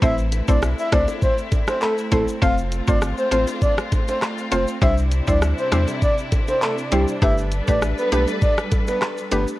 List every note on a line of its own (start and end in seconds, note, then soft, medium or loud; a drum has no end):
0.02 0.41 A1 loud
0.02 0.23 A3 medium
0.02 2.40 A3 medium
0.02 7.18 C4 medium
0.02 0.23 C4 medium
0.02 2.40 E4 medium
0.02 0.23 E4 medium
0.02 0.23 C5 loud
0.02 0.15 E5 loud
0.02 kick loud
0.02 shaker medium
0.18 shaker medium
0.32 closed hi-hat medium
0.32 high bongo medium
0.32 shaker medium
0.48 0.74 B1 medium
0.48 0.88 A3 medium
0.48 0.89 C4 medium
0.48 0.89 E4 medium
0.48 0.89 C5 medium
0.48 0.59 D5 medium
0.48 kick medium
0.48 shaker medium
0.62 cross-stick loud
0.62 high bongo medium
0.62 shaker medium
0.78 0.89 E5 medium
0.78 shaker soft
0.92 1.06 C2 medium
0.92 1.20 A3 medium
0.92 1.20 C4 medium
0.92 1.20 E4 medium
0.92 1.20 C5 medium
0.92 1.05 D5 medium
0.92 kick loud
0.92 cross-stick loud
0.92 closed hi-hat medium
0.92 low bongo medium
0.92 shaker medium
1.08 high bongo medium
1.08 shaker medium
1.22 1.35 C5 medium
1.22 kick loud
1.22 shaker medium
1.38 shaker medium
1.52 kick loud
1.52 closed hi-hat medium
1.52 high bongo medium
1.52 shaker medium
1.68 1.79 C5 medium
1.68 cross-stick loud
1.68 high bongo medium
1.68 shaker medium
1.82 1.95 A4 medium
1.82 clap loud
1.82 shaker medium
1.98 shaker medium
2.12 2.26 A1 medium
2.12 2.33 A3 medium
2.12 2.33 C4 medium
2.12 2.33 E4 medium
2.12 2.25 A4 medium
2.12 2.33 C5 medium
2.12 kick medium
2.12 closed hi-hat medium
2.12 low bongo medium
2.12 shaker medium
2.28 shaker medium
2.42 2.81 F1 loud
2.42 2.63 A3 loud
2.42 4.79 A3 medium
2.42 2.63 C4 medium
2.42 4.79 F4 medium
2.42 2.63 F4 medium
2.42 2.63 C5 loud
2.42 2.55 F5 loud
2.42 kick loud
2.42 shaker medium
2.58 shaker medium
2.72 closed hi-hat medium
2.72 shaker soft
2.88 3.14 G1 medium
2.88 3.28 A3 medium
2.88 3.29 C4 medium
2.88 3.29 F4 medium
2.88 3.29 C5 medium
2.88 2.99 D5 medium
2.88 kick loud
2.88 shaker medium
3.02 cross-stick loud
3.02 shaker medium
3.18 3.29 C5 medium
3.18 shaker soft
3.32 3.46 A1 medium
3.32 3.60 A3 medium
3.32 3.60 C4 medium
3.32 3.60 F4 medium
3.32 3.45 C5 medium
3.32 3.60 C5 medium
3.32 closed hi-hat medium
3.32 low bongo medium
3.32 shaker medium
3.48 high bongo medium
3.48 shaker medium
3.62 3.75 D5 medium
3.62 kick loud
3.62 shaker medium
3.78 cross-stick loud
3.78 shaker medium
3.92 kick loud
3.92 closed hi-hat medium
3.92 high bongo medium
3.92 shaker medium
4.08 4.19 C5 medium
4.08 high bongo medium
4.08 shaker medium
4.22 cross-stick medium
4.22 clap medium
4.22 shaker medium
4.38 shaker medium
4.52 4.66 F1 medium
4.52 4.73 A3 medium
4.52 4.73 C4 medium
4.52 4.73 F4 medium
4.52 4.73 C5 medium
4.52 4.65 C5 medium
4.52 closed hi-hat medium
4.52 low bongo medium
4.52 shaker medium
4.68 shaker medium
4.82 5.21 C2 loud
4.82 7.20 C3 medium
4.82 5.03 G3 loud
4.82 5.03 D4 medium
4.82 9.58 D4 medium
4.82 5.03 E4 medium
4.82 7.20 E4 medium
4.82 5.03 C5 loud
4.82 4.95 E5 loud
4.82 kick loud
4.82 shaker medium
4.98 shaker medium
5.12 closed hi-hat medium
5.12 shaker soft
5.27 5.54 D2 medium
5.27 5.68 G3 medium
5.27 5.68 D4 medium
5.27 5.69 E4 medium
5.27 5.69 C5 medium
5.27 5.39 D5 medium
5.27 kick medium
5.27 shaker medium
5.42 cross-stick loud
5.42 shaker medium
5.58 5.69 C5 medium
5.58 shaker soft
5.72 5.86 E2 medium
5.72 6.00 G3 medium
5.72 6.00 D4 medium
5.72 6.00 E4 medium
5.72 5.85 C5 medium
5.72 6.00 C5 medium
5.72 cross-stick loud
5.72 closed hi-hat medium
5.72 low bongo medium
5.72 shaker medium
5.88 high bongo medium
5.88 shaker medium
6.02 6.15 D5 medium
6.02 kick loud
6.02 shaker medium
6.18 shaker medium
6.32 kick loud
6.32 closed hi-hat medium
6.32 high bongo medium
6.32 shaker medium
6.48 6.59 C5 medium
6.48 high bongo medium
6.48 shaker medium
6.62 6.75 A4 medium
6.62 clap medium
6.62 shaker medium
6.78 shaker medium
6.91 7.06 C2 medium
6.91 7.13 G3 medium
6.91 7.13 D4 medium
6.91 7.13 E4 medium
6.91 7.05 G4 medium
6.91 7.13 C5 medium
6.91 closed hi-hat medium
6.91 low bongo medium
6.91 shaker medium
7.08 shaker medium
7.22 7.61 G1 loud
7.22 9.59 G3 medium
7.22 7.43 A3 medium
7.22 7.43 D4 medium
7.22 7.43 G4 medium
7.22 9.59 A4 medium
7.22 9.59 B4 medium
7.22 7.44 B4 loud
7.22 7.35 E5 loud
7.22 kick loud
7.22 shaker medium
7.38 shaker medium
7.52 closed hi-hat medium
7.52 shaker medium
7.68 7.94 A1 medium
7.68 8.08 A3 medium
7.68 8.09 D4 medium
7.68 8.09 G4 medium
7.68 8.09 B4 medium
7.68 7.79 D5 medium
7.68 kick medium
7.68 shaker medium
7.82 cross-stick loud
7.82 shaker medium
7.98 8.09 B4 medium
7.98 shaker soft
8.12 8.26 B1 medium
8.12 8.40 A3 medium
8.12 8.40 D4 medium
8.12 8.40 G4 medium
8.12 8.24 B4 medium
8.12 8.40 B4 medium
8.12 closed hi-hat medium
8.12 low bongo medium
8.12 shaker medium
8.28 high bongo medium
8.28 shaker medium
8.42 8.54 D5 medium
8.42 kick loud
8.42 shaker medium
8.58 cross-stick loud
8.58 shaker medium
8.72 kick loud
8.72 closed hi-hat medium
8.72 high bongo medium
8.72 shaker medium
8.88 8.99 B4 medium
8.88 high bongo medium
8.88 shaker medium
9.02 cross-stick medium
9.02 clap medium
9.02 shaker medium
9.18 shaker medium
9.32 9.46 G1 medium
9.32 9.53 A3 medium
9.32 9.53 D4 medium
9.32 9.53 G4 medium
9.32 9.45 B4 medium
9.32 9.53 B4 medium
9.32 closed hi-hat medium
9.32 low bongo medium
9.32 shaker medium
9.48 shaker medium